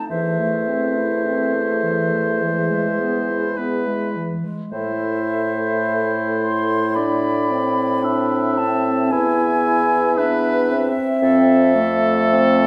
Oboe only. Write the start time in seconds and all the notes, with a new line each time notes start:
0.11 C5
3.57 B4
4.72 C5
6.96 D5
8.04 E5
9.12 E5
10.18 B4
11.22 A4